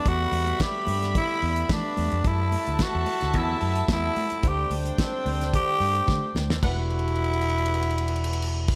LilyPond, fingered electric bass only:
\new Staff \with { instrumentName = "Fingered electric bass" } { \clef bass \time 4/4 \key e \minor \tempo 4 = 110 e,8 e,8 r8 g,8. r16 e,8 e16 r16 e,16 f,16 | fis,8. d,16 r16 e,16 r16 d,16 e,8 fis,8 e,8 r8 | d,8 d,8 r8 d,8. r16 g,8 d16 r16 d,16 dis,16 | e,,1 | }